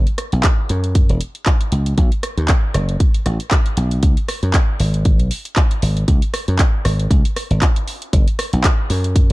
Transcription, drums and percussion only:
0.07 closed hi-hat soft
0.18 cross-stick medium
0.18 closed hi-hat medium
0.32 closed hi-hat soft
0.43 kick loud
0.43 clap loud
0.43 closed hi-hat medium
0.69 closed hi-hat medium
0.84 closed hi-hat soft
0.95 kick loud
0.95 closed hi-hat medium
1.09 closed hi-hat soft
1.21 closed hi-hat medium
1.35 closed hi-hat soft
1.46 kick loud
1.46 clap loud
1.46 closed hi-hat medium
1.61 closed hi-hat soft
1.72 closed hi-hat medium
1.86 closed hi-hat soft
1.98 kick loud
1.98 closed hi-hat medium
2.12 closed hi-hat soft
2.23 cross-stick medium
2.23 closed hi-hat medium
2.38 closed hi-hat soft
2.48 kick loud
2.48 clap loud
2.48 closed hi-hat medium
2.74 cross-stick medium
2.74 closed hi-hat medium
2.89 closed hi-hat soft
3.00 kick loud
3.00 closed hi-hat medium
3.14 closed hi-hat soft
3.26 cross-stick medium
3.26 closed hi-hat medium
3.40 closed hi-hat soft
3.51 kick loud
3.51 clap loud
3.51 closed hi-hat medium
3.66 closed hi-hat soft
3.77 closed hi-hat medium
3.91 closed hi-hat soft
4.03 kick loud
4.03 closed hi-hat medium
4.17 closed hi-hat soft
4.28 cross-stick medium
4.28 open hi-hat medium
4.43 closed hi-hat soft
4.54 kick loud
4.54 clap loud
4.54 closed hi-hat medium
4.80 open hi-hat medium
4.94 closed hi-hat soft
5.05 kick loud
5.05 closed hi-hat medium
5.20 closed hi-hat soft
5.31 open hi-hat loud
5.45 closed hi-hat soft
5.56 kick loud
5.56 clap loud
5.56 closed hi-hat medium
5.71 closed hi-hat soft
5.82 open hi-hat medium
5.97 closed hi-hat soft
6.08 kick loud
6.08 closed hi-hat medium
6.22 closed hi-hat soft
6.34 cross-stick medium
6.34 open hi-hat medium
6.48 closed hi-hat soft
6.59 kick loud
6.59 clap loud
6.59 closed hi-hat medium
6.85 cross-stick medium
6.85 open hi-hat medium
7.00 closed hi-hat soft
7.11 kick loud
7.11 closed hi-hat medium
7.25 closed hi-hat soft
7.36 cross-stick medium
7.36 open hi-hat medium
7.51 closed hi-hat soft
7.62 kick loud
7.62 clap loud
7.62 closed hi-hat medium
7.76 closed hi-hat soft
7.88 open hi-hat medium
8.02 closed hi-hat soft
8.13 kick loud
8.13 closed hi-hat medium
8.28 closed hi-hat soft
8.39 cross-stick medium
8.39 open hi-hat loud
8.53 closed hi-hat soft
8.64 kick loud
8.64 clap loud
8.64 closed hi-hat medium
8.90 open hi-hat medium
9.04 closed hi-hat soft
9.16 kick loud
9.16 closed hi-hat medium

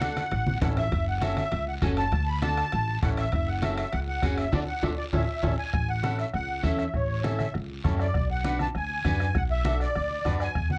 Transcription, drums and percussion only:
0.01 bombo rim medium
0.01 high conga medium
0.01 high timbale medium
0.01 short guiro medium
0.17 bombo rim medium
0.17 high conga medium
0.17 high timbale medium
0.17 short guiro medium
0.31 bombo rim medium
0.31 high timbale medium
0.31 long guiro medium
0.47 high conga medium
0.61 bombo low medium
0.61 bombo rim medium
0.61 low conga medium
0.61 high timbale medium
0.61 low timbale medium
0.61 short guiro medium
0.77 bombo rim medium
0.77 low conga medium
0.77 high timbale medium
0.77 short guiro medium
0.91 bombo low medium
0.91 bombo rim medium
0.91 high conga soft
0.91 high timbale medium
0.91 long guiro medium
1.22 bombo rim medium
1.22 high conga medium
1.22 high timbale medium
1.22 short guiro medium
1.37 bombo rim medium
1.37 high conga medium
1.37 high timbale medium
1.37 short guiro medium
1.52 bombo rim medium
1.52 high timbale medium
1.52 long guiro medium
1.67 high conga soft
1.82 bombo low medium
1.82 bombo rim medium
1.82 high conga medium
1.82 high timbale medium
1.82 short guiro medium
1.97 bombo rim medium
1.97 high timbale medium
1.97 short guiro medium
2.12 bombo low medium
2.12 bombo rim medium
2.12 high conga soft
2.12 high timbale medium
2.12 long guiro medium
2.42 bombo rim medium
2.42 high conga medium
2.42 high timbale medium
2.42 short guiro medium
2.57 bombo rim medium
2.57 high timbale medium
2.57 short guiro medium
2.72 bombo rim medium
2.72 high timbale medium
2.72 long guiro medium
2.88 high conga soft
3.02 bombo low medium
3.02 bombo rim medium
3.02 high conga medium
3.02 low conga medium
3.02 high timbale medium
3.02 short guiro medium
3.17 bombo rim medium
3.17 high timbale medium
3.17 short guiro medium
3.32 bombo low medium
3.32 bombo rim medium
3.32 high conga soft
3.32 high timbale medium
3.32 long guiro medium
3.62 bombo rim medium
3.62 high conga medium
3.62 high timbale medium
3.62 short guiro medium
3.77 bombo rim medium
3.77 high timbale medium
3.77 short guiro medium
3.92 bombo rim medium
3.92 high timbale medium
3.92 long guiro medium
4.08 high conga soft
4.22 bombo low medium
4.22 bombo rim medium
4.22 high conga medium
4.22 high timbale medium
4.22 short guiro medium
4.38 bombo rim medium
4.38 high timbale medium
4.38 short guiro medium
4.53 bombo low medium
4.53 high conga loud
4.53 high timbale medium
4.53 long guiro loud
4.83 bombo low loud
4.83 high conga medium
4.83 high timbale loud
4.83 long guiro medium
5.13 bombo low medium
5.13 high conga medium
5.13 high timbale medium
5.13 long guiro loud
5.43 bombo low medium
5.43 high conga medium
5.43 high timbale medium
5.43 long guiro loud
5.73 bombo low medium
5.73 bombo rim medium
5.73 high conga soft
5.73 long guiro medium
6.04 bombo rim medium
6.04 high conga medium
6.04 short guiro medium
6.19 bombo rim medium
6.19 short guiro medium
6.34 bombo rim medium
6.34 long guiro medium
6.49 high conga soft
6.64 bombo low medium
6.64 bombo rim medium
6.64 high conga medium
6.64 short guiro medium
6.79 bombo rim medium
6.79 short guiro medium
6.94 bombo low medium
6.94 bombo rim medium
6.94 high conga soft
6.94 long guiro medium
7.24 bombo rim medium
7.24 high conga medium
7.24 short guiro medium
7.39 bombo rim medium
7.39 high conga medium
7.39 short guiro medium
7.54 bombo rim medium
7.54 long guiro medium
7.70 high conga soft
7.84 bombo low medium
7.84 bombo rim medium
7.84 high conga medium
7.84 short guiro medium
7.99 bombo rim medium
7.99 short guiro medium
8.14 bombo low medium
8.14 bombo rim medium
8.14 high conga soft
8.14 long guiro medium
8.44 bombo rim medium
8.44 high conga medium
8.44 short guiro medium
8.59 bombo rim medium
8.59 high conga medium
8.59 short guiro medium
8.75 bombo rim medium
8.75 long guiro medium
8.89 high conga soft
9.05 bombo low medium
9.05 bombo rim medium
9.05 high conga medium
9.05 short guiro medium
9.20 bombo rim medium
9.20 short guiro medium
9.35 bombo low medium
9.35 bombo rim medium
9.35 high conga soft
9.35 long guiro medium
9.65 bombo rim medium
9.65 high conga medium
9.65 short guiro medium
9.80 bombo rim medium
9.80 short guiro medium
9.95 bombo rim medium
9.95 long guiro medium
10.10 high conga soft
10.25 bombo low medium
10.25 bombo rim medium
10.25 high conga medium
10.25 short guiro medium
10.40 bombo rim medium
10.40 short guiro medium
10.55 bombo low medium
10.55 bombo rim medium
10.55 high conga soft
10.55 long guiro medium
10.70 high conga medium

